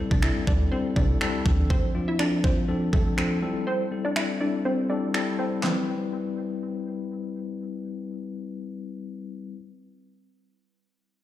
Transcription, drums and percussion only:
0.11 kick
0.22 finger snap
0.47 kick
0.96 kick
1.21 finger snap
1.46 kick
1.70 kick
2.19 finger snap
2.44 kick
2.93 kick
3.18 finger snap
4.16 finger snap
5.14 finger snap
5.63 snare, clap

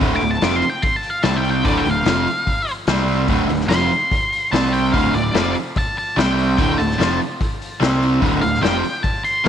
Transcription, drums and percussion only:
0.01 kick, open hi-hat
0.21 open hi-hat
0.41 snare, open hi-hat
0.62 open hi-hat
0.82 kick, open hi-hat
1.03 open hi-hat
1.23 snare, open hi-hat
1.45 open hi-hat
1.65 kick, open hi-hat
1.85 open hi-hat
2.06 snare, open hi-hat
2.27 open hi-hat
2.47 kick, open hi-hat
2.67 open hi-hat
2.87 snare, open hi-hat
3.08 open hi-hat
3.28 kick, open hi-hat
3.49 open hi-hat
3.61 snare
3.70 snare, open hi-hat
3.92 open hi-hat
4.11 kick, open hi-hat
4.32 open hi-hat
4.53 snare, open hi-hat
4.74 open hi-hat
4.94 kick, open hi-hat
5.14 open hi-hat
5.34 snare, open hi-hat
5.55 open hi-hat
5.76 kick, open hi-hat
5.97 open hi-hat
6.18 snare, open hi-hat
6.38 open hi-hat
6.58 kick, open hi-hat
6.80 open hi-hat
6.91 snare
7.00 snare, open hi-hat
7.22 open hi-hat
7.41 kick, open hi-hat
7.62 open hi-hat
7.82 snare, open hi-hat
8.02 open hi-hat
8.22 kick, open hi-hat
8.43 open hi-hat
8.55 snare
8.64 snare, open hi-hat
8.85 open hi-hat
9.04 kick, open hi-hat
9.25 open hi-hat

